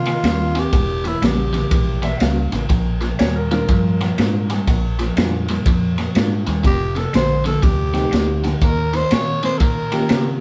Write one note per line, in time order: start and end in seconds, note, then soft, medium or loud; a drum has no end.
0.00 0.16 C3 medium
0.00 0.61 F4 medium
0.05 0.22 D#3 medium
0.05 0.22 A#3 medium
0.05 snare soft
0.05 ride medium
0.23 0.65 D#2 medium
0.23 0.52 D#3 medium
0.23 0.52 G3 medium
0.23 0.52 A#3 medium
0.23 0.53 C4 medium
0.23 0.52 C#4 medium
0.23 0.53 F4 medium
0.23 snare medium
0.23 ride medium
0.55 0.71 D#3 medium
0.55 0.71 C4 medium
0.55 snare soft
0.55 ride medium
0.60 1.09 G4 loud
0.73 1.14 E1 medium
0.73 1.01 E2 medium
0.73 1.02 B2 medium
0.73 kick loud
0.73 snare soft
0.73 ride medium
1.04 1.20 E2 medium
1.04 1.21 B2 medium
1.04 1.27 E4 medium
1.04 snare soft
1.04 ride medium
1.22 1.64 A#1 medium
1.22 1.51 E2 medium
1.22 1.51 C#3 medium
1.22 1.51 G3 soft
1.22 1.51 A#3 soft
1.22 1.51 C#4 soft
1.22 1.51 F#4 medium
1.22 2.23 G4 medium
1.22 snare loud
1.22 ride medium
1.53 1.69 E2 medium
1.53 1.70 C#3 medium
1.53 snare soft
1.53 ride medium
1.71 2.13 A#1 medium
1.71 2.00 E2 medium
1.71 2.00 B2 medium
1.71 kick loud
1.71 snare soft
1.71 ride medium
2.02 2.19 E2 medium
2.02 2.19 B2 medium
2.02 2.16 E5 medium
2.02 snare soft
2.02 ride medium
2.17 2.48 C#2 medium
2.17 2.49 E2 medium
2.17 2.21 E5 medium
2.17 ride medium
2.21 2.49 C#3 medium
2.21 2.50 G3 medium
2.21 2.50 A#3 medium
2.21 2.50 C#4 medium
2.21 2.50 F#4 medium
2.21 3.17 F5 medium
2.21 snare loud
2.52 2.68 A1 medium
2.52 2.68 E2 medium
2.52 2.69 C#3 medium
2.52 snare soft
2.52 ride medium
2.69 3.12 A#1 loud
2.69 2.98 A#2 medium
2.69 2.98 F3 medium
2.69 kick loud
2.69 snare soft
2.69 ride medium
3.01 3.17 A#2 medium
3.01 3.17 F3 medium
3.01 snare soft
3.01 ride soft
3.19 3.61 D#2 medium
3.19 3.48 A#2 medium
3.19 3.48 G3 medium
3.19 3.35 C#5 medium
3.19 snare loud
3.19 ride medium
3.36 3.51 A#4 medium
3.51 3.67 A#2 medium
3.51 3.67 G3 medium
3.51 3.67 G#3 medium
3.51 3.67 C4 medium
3.51 3.67 D4 medium
3.51 3.67 F4 medium
3.51 4.47 F4 medium
3.51 4.48 A#4 medium
3.51 snare soft
3.51 ride medium
3.68 4.10 G2 medium
3.68 3.97 A#2 medium
3.68 3.97 F3 loud
3.68 kick loud
3.68 snare soft
3.68 ride medium
4.01 4.17 A#2 medium
4.01 4.17 F3 medium
4.01 snare soft
4.01 ride medium
4.18 4.60 G#2 medium
4.18 4.46 A#2 medium
4.18 4.47 G3 medium
4.18 4.47 G#3 medium
4.18 4.47 C4 soft
4.18 4.47 D4 medium
4.18 4.47 F4 medium
4.18 snare medium
4.18 ride medium
4.50 4.66 A#2 medium
4.50 4.66 G3 medium
4.50 snare soft
4.50 ride medium
4.67 5.09 A#1 medium
4.67 4.96 A#2 medium
4.67 4.96 F3 medium
4.67 kick loud
4.67 snare soft
4.67 ride medium
4.99 5.15 A#2 medium
4.99 5.15 F3 medium
4.99 snare soft
4.99 ride medium
5.17 5.58 F2 medium
5.17 5.45 A#2 medium
5.17 5.46 G3 medium
5.17 5.45 G#3 medium
5.17 5.45 C4 medium
5.17 5.46 D4 medium
5.17 5.46 F4 medium
5.17 snare loud
5.17 ride medium
5.48 5.65 A#2 medium
5.48 5.65 G3 medium
5.48 snare soft
5.48 ride medium
5.66 6.08 F2 medium
5.66 5.95 A#2 medium
5.66 5.95 F3 medium
5.66 kick loud
5.66 snare soft
5.66 ride medium
5.98 6.14 A#2 medium
5.98 6.14 F3 medium
5.98 snare soft
5.98 ride medium
6.15 6.42 G#2 medium
6.15 6.44 A#2 medium
6.15 6.44 G3 medium
6.15 6.44 G#3 medium
6.15 6.44 C4 medium
6.15 6.44 D4 medium
6.15 6.44 F4 medium
6.15 snare loud
6.15 ride medium
6.47 6.62 D#2 medium
6.47 6.63 A#2 medium
6.47 6.63 G3 medium
6.47 snare soft
6.47 ride medium
6.64 7.06 F1 loud
6.64 6.92 F2 medium
6.64 6.93 C3 medium
6.64 6.99 G4 loud
6.64 kick loud
6.64 snare soft
6.64 ride medium
6.95 7.12 F2 medium
6.95 7.12 C3 medium
6.95 7.15 A4 medium
6.95 snare soft
6.95 ride medium
7.13 7.56 A#1 medium
7.13 7.42 F2 medium
7.13 7.42 D3 loud
7.13 7.44 C5 medium
7.13 snare loud
7.13 ride medium
7.44 7.61 F2 medium
7.44 7.61 D3 medium
7.44 7.65 A4 medium
7.44 snare soft
7.44 ride medium
7.62 8.05 D2 medium
7.62 7.91 F2 medium
7.62 7.91 C3 medium
7.62 8.44 G4 medium
7.62 kick loud
7.62 snare soft
7.62 ride medium
7.93 8.10 F2 medium
7.93 8.10 C3 medium
7.93 8.58 A3 medium
7.93 8.58 C4 medium
7.93 8.58 D#4 medium
7.93 8.58 G4 medium
7.93 snare soft
7.93 ride soft
8.11 8.54 D2 medium
8.11 8.40 F2 medium
8.11 8.41 D3 medium
8.11 snare medium
8.11 ride medium
8.44 8.60 F2 medium
8.44 8.60 D3 medium
8.44 snare soft
8.44 ride medium
8.61 9.03 D#2 medium
8.61 8.90 D#3 medium
8.61 8.90 A#3 medium
8.61 8.97 A#4 medium
8.61 kick loud
8.61 snare soft
8.61 ride medium
8.93 9.09 D#3 medium
8.93 9.10 A#3 medium
8.93 9.15 C5 medium
8.93 snare soft
8.93 ride medium
9.11 9.53 A#2 medium
9.11 9.39 D#3 medium
9.11 9.40 C4 loud
9.11 9.44 C#5 medium
9.11 snare loud
9.11 ride medium
9.43 9.59 D#3 medium
9.43 9.59 C4 medium
9.43 9.59 C5 medium
9.43 snare soft
9.43 ride medium
9.58 10.02 A#2 medium
9.58 9.89 D#3 medium
9.58 9.89 A#3 medium
9.58 9.64 A4 medium
9.58 kick loud
9.58 snare soft
9.58 ride medium
9.62 10.40 A#4 medium
9.92 10.08 D#3 medium
9.92 10.08 A#3 medium
9.92 10.40 A#3 medium
9.92 10.40 C#4 medium
9.92 10.40 F4 medium
9.92 10.40 G4 medium
9.92 snare soft
9.92 ride medium
10.09 10.37 C#3 medium
10.09 10.38 D#3 medium
10.09 10.38 C4 medium
10.09 snare loud
10.09 ride medium